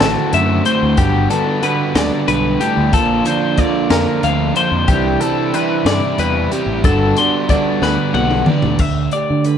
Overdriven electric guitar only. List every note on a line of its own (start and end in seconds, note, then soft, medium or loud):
0.02 0.33 D3 medium
0.02 0.34 A3 medium
0.02 0.34 C4 medium
0.02 0.34 F#4 medium
0.34 0.65 D3 medium
0.34 0.65 A3 medium
0.34 0.64 C4 medium
0.34 0.64 F#4 medium
0.65 0.96 D3 medium
0.65 0.97 A3 medium
0.65 0.98 C4 medium
0.65 0.98 F#4 medium
0.97 1.30 D3 medium
0.97 1.30 G3 medium
0.97 1.30 B3 medium
0.97 1.29 D4 medium
1.30 1.61 D3 medium
1.30 1.62 G3 medium
1.30 1.62 B3 medium
1.30 1.62 D4 medium
1.62 1.95 D3 medium
1.62 1.95 G3 medium
1.62 1.94 B3 medium
1.62 1.93 D4 medium
1.94 2.26 D3 medium
1.94 2.27 G3 medium
1.94 2.28 B3 medium
1.94 2.28 D4 medium
2.27 2.60 D3 medium
2.27 2.59 G3 medium
2.27 2.59 B3 medium
2.27 2.58 D4 medium
2.60 2.91 D3 medium
2.60 2.92 G3 medium
2.60 2.92 B3 medium
2.60 2.92 D4 medium
2.92 3.24 D3 medium
2.92 3.24 F3 medium
2.92 3.24 A#3 medium
2.92 3.23 D4 medium
3.25 3.57 D3 medium
3.25 3.57 F3 medium
3.25 3.57 A#3 medium
3.25 3.58 D4 medium
3.58 3.91 D3 medium
3.58 3.91 F3 medium
3.58 3.90 A#3 medium
3.58 3.90 D4 medium
3.91 4.21 D3 medium
3.91 4.22 F3 medium
3.91 4.22 A#3 medium
3.91 4.23 D4 medium
4.23 4.55 D3 medium
4.23 4.54 F3 medium
4.23 4.54 A#3 medium
4.23 4.53 D4 medium
4.54 4.89 D3 medium
4.54 4.88 F3 medium
4.54 4.88 A#3 medium
4.54 4.88 D4 medium
4.89 5.21 C3 medium
4.89 5.21 G3 medium
4.89 5.21 C4 medium
4.89 5.20 E4 medium
5.22 5.52 C3 medium
5.22 5.53 G3 medium
5.22 5.53 C4 medium
5.22 5.54 E4 medium
5.54 5.86 C3 medium
5.54 5.87 G3 medium
5.54 5.87 C4 medium
5.54 5.87 E4 medium
5.88 6.18 C3 medium
5.88 6.18 G3 medium
5.88 6.18 C4 medium
5.88 6.18 E4 medium
6.19 6.52 C3 medium
6.19 6.52 G3 medium
6.19 6.52 C4 medium
6.19 6.51 E4 medium
6.52 6.84 C3 medium
6.52 6.83 G3 medium
6.52 6.85 C4 medium
6.52 6.85 E4 medium
6.84 7.17 D3 medium
6.84 7.17 G3 medium
6.84 7.16 B3 medium
6.84 7.15 D4 medium
7.17 7.49 D3 medium
7.17 7.49 G3 medium
7.17 7.49 B3 medium
7.17 7.49 D4 medium
7.50 7.82 D3 medium
7.50 7.82 G3 medium
7.50 7.81 B3 medium
7.50 7.81 D4 medium
7.82 8.14 D3 medium
7.82 8.15 G3 medium
7.82 8.15 B3 medium
7.82 8.15 D4 medium
8.15 8.48 D3 medium
8.15 8.47 G3 medium
8.15 8.48 B3 medium
8.15 8.47 D4 medium
8.48 8.81 D3 medium
8.48 8.81 G3 medium
8.48 8.81 B3 medium
8.48 8.80 D4 medium